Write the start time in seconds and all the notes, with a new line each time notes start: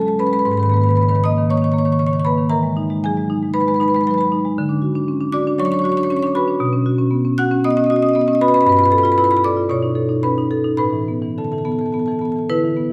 0.00 A4 A5
0.06 G#3 A4 A5
0.19 C#4 B4 B5
0.26 B4 B5
0.31 G#3 B4 B5
0.39 B4 B5
0.45 G#2 B4 B5
0.51 B4 B5
0.57 D#3 B4 B5
0.63 B4 B5
0.69 A#3 B5
0.74 B4 B5
0.81 B4 B5
0.86 D#3 B4
0.91 B5
0.95 C#3 B4 B5
1.01 B4 B5
1.08 D#3 B4 B5
1.15 B4 B5
1.24 A#3 D#5 D#6
1.38 D#3
1.50 A#3 C#5 C#6
1.57 C#5 C#6
1.62 D#3 C#5 C#6
1.72 A#3 C#5 C#6
1.78 C#5 C#6
1.85 D#3 C#5 C#6
1.92 C#5 C#6
1.99 C#3 C#5 C#6
2.07 C#5 C#6
2.11 D#3 C#5 C#6
2.20 C#6
2.25 A#3 B4 B5
2.38 D#3
2.50 E3 A#4 A#5
2.63 G#3
2.77 D#4
2.90 G#3
3.04 F#3 G#4 G#5
3.17 G#3
3.30 D#4
3.43 G#3
3.54 D#4 B4 B5
3.60 B4 B5
3.67 G#3 B4 B5
3.74 B4 B5
3.80 D#4 B4 B5
3.88 B4 B5
3.94 G#3 B4 B5
4.01 B4 B5
4.07 F#3 B4 B5
4.14 G#3 B5
4.18 B4 B5
4.32 D#4
4.45 G#3
4.58 D3
4.69 D4
4.82 F#4
4.95 D4
5.08 C#4
5.21 D4
5.32 F#4 D5 D6
5.47 D4
5.58 F#3 C#5 C#6
5.65 C#5 C#6
5.71 D4 C#5 C#6
5.79 C#5 C#6
5.84 F#4 C#6
5.89 C#5 C#6
5.97 D4 C#5 C#6
6.03 C#5 C#6
6.10 C#4 C#5 C#6
6.17 C#5 C#6
6.23 D4 C#6
6.27 C#5
6.35 F#4 B4 B5
6.48 D4
6.60 B2
6.73 C#4
6.86 F#4
6.98 C#4
7.11 B3
7.25 C#4
7.38 F#4 F#5 F#6
7.51 C#4
7.64 B3 D#5 D#6
7.71 D#5 D#6
7.77 C#4 D#5 D#6
7.84 D#5 D#6
7.90 F#4 D#5 D#6
7.96 D#5 D#6
8.02 C#4 D#6
8.06 D#5 D#6
8.14 B3 D#5 D#6
8.20 D#5 D#6
8.27 C#4 D#5 D#6
8.33 D#5 D#6
8.41 F#4 B4 B5
8.48 B4 B5
8.54 C#4 B4 B5
8.61 B4 B5
8.66 G2 B4 B5
8.72 B5
8.77 F4 B4 B5
8.84 B4 B5
8.90 A4 B4 B5
8.98 B4 B5
9.03 F4 B4 B5
9.12 B4 B5
9.18 E4 B4 B5
9.24 B4 B5
9.31 F4 B4 B5
9.37 B5
9.44 A4 D5 D6
9.57 F4
9.69 B2 C#5 C#6
9.83 D#4
9.95 A4
10.09 D#4
10.23 C#4 B4 B5
10.38 D#4
10.51 A4
10.64 D#4
10.77 A2 B4 B5
10.93 E3
11.08 B3
11.22 E3
11.38 D3 A4 A5
11.44 A4 A5
11.52 E3 A4 A5
11.58 A4 A5
11.65 B3 A4 A5
11.72 A4 A5
11.79 E3 A4 A5
11.86 A4 A5
11.92 B3 A4 A5
11.99 A4 A5
12.06 E3 A4 A5
12.12 A4 A5
12.19 B3 A4 A5
12.25 A5
12.30 A4 A5
12.36 E3 A4 A5
12.50 D3 E4 B4
12.64 E3
12.77 B3